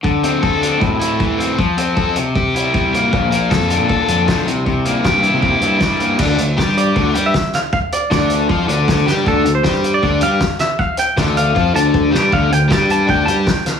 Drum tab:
CC |--------|--------|--------|--------|
HH |-x-x-x-x|-x-x-x-x|-x-x-x-x|-x-x-x-x|
SD |--------|--------|--o---o-|--o---o-|
BD |o-o-o-o-|o-o-o-o-|o-o-o-o-|o-o-o-o-|

CC |x-------|--------|--------|--------|
HH |-x-x-x-x|-x-x-x-x|-x-x-x-x|-x-x-x--|
SD |--o---oo|--o---oo|--o---oo|--o----o|
BD |o-o-o-o-|o-o-o-o-|o-o-o-o-|o-o-o-o-|

CC |--------|
HH |-x-x-x-x|
SD |--o---oo|
BD |o-o-o-o-|